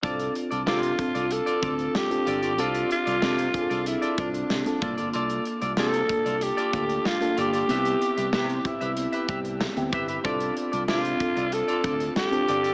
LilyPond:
<<
  \new Staff \with { instrumentName = "Clean electric guitar" } { \time 4/4 \key f \lydian \tempo 4 = 94 <f' a' d''>8 r16 <f' a' d''>16 <f' a' d''>16 r8 <f' a' d''>16 r16 <f' a' d''>16 <f' a' d''>16 r8. <f' a' d''>16 <f' a' d''>16 | <f' a' d''>8 r16 <f' a' d''>16 <f' a' d''>16 r8 <f' a' d''>16 r16 <f' a' d''>16 <f' a' d''>16 r8. <f' a' d''>16 <f' a' d''>16 | <f' a' d''>8 r16 <f' a' d''>16 <f' a' d''>16 r8 <f' a' d''>16 r16 <f' a' d''>16 <f' a' d''>16 r8. <f' a' d''>16 <f' a' d''>16 | <g' b' e''>8 r16 <g' b' e''>16 <g' b' e''>16 r8 <g' b' e''>16 r16 <g' b' e''>16 <g' b' e''>16 r8. <g' b' e''>16 <g' b' e''>16 |
<f' a' d''>8 r16 <f' a' d''>16 <f' a' d''>16 r8 <f' a' d''>16 r16 <f' a' d''>16 <f' a' d''>16 r8. <f' a' d''>16 <f' a' d''>16 | }
  \new Staff \with { instrumentName = "Alto saxophone" } { \time 4/4 \key f \lydian r4 f'4 a'4 g'4 | f'8 f'4. e'8 d'4 r8 | r4 a'4 g'4 f'8 g'8~ | g'4 g'8 e'4 r4. |
r4 f'4 a'4 g'4 | }
  \new Staff \with { instrumentName = "FM electric piano" } { \time 4/4 \key f \lydian <c' d' f' a'>8. r16 <c' d' f' a'>8 <c' d' f' a'>8. r16 <c' d' f' a'>8 r16 <c' d' f' a'>8 r16 | <c' d' f' a'>8. r16 <c' d' f' a'>8 <c' d' f' aes' a'>8. r16 <c' d' f' a'>8 r16 <c' d' f' a'>16 <bes d' f'>8~ | <bes d' f'>8. r16 <bes d' f' a'>8 <bes d' f' a'>8. r16 <bes d' f' a'>8 r16 <bes d' f' a'>8 r16 | <b c' e' g'>8. r16 <b c' e' g'>8 <b c' e' g'>8. r16 <b c' e' g'>8 r16 <b c' e' g'>8 r16 |
<c' d' f' a'>8. r16 <c' d' f' a'>8 <c' d' f' a'>8. r16 <c' d' f' a'>8 r16 <c' d' f' a'>8 r16 | }
  \new Staff \with { instrumentName = "Fretless electric bass" } { \clef bass \time 4/4 \key f \lydian c,8 r16 c,16 c8 r16 c,8 r16 d,8 r8 g,,8 | c,8 r16 c,16 c8 r16 c,8 r16 c,8 c16 r16 c,16 g,,16 | c,8 r16 c,16 c8 r16 c,8 r16 d,8 r8 g,,8 | c,8 r16 c,16 c8 r16 c,8 r16 c,8. d,16 g,,8 |
c,8 r16 c,16 c8 r16 c,8 r16 d,8 r8 g,,8 | }
  \new DrumStaff \with { instrumentName = "Drums" } \drummode { \time 4/4 <hh bd>16 hh16 hh16 hh16 sn16 hh16 <hh bd>16 hh16 hh16 hh16 <hh bd>16 hh16 sn16 hh16 hh16 hh16 | hh16 hh16 hh16 hh16 sn16 hh16 <hh bd>16 hh16 hh16 hh16 <hh bd>16 hh16 sn16 hh16 <hh bd>16 hh16 | hh16 hh16 hh16 hh16 sn16 hh16 <hh bd>16 hh16 hh16 hh16 <hh bd>16 hh16 sn16 hh16 hh16 hh16 | hh16 hh16 hh16 hh16 sn16 hh16 <hh bd>16 hh16 hh16 hh16 <hh bd>16 hh16 sn16 hh16 <hh bd>16 hh16 |
<hh bd>16 hh16 hh16 hh16 sn16 hh16 <hh bd>16 hh16 hh16 hh16 <hh bd>16 hh16 sn16 hh16 hh16 hh16 | }
>>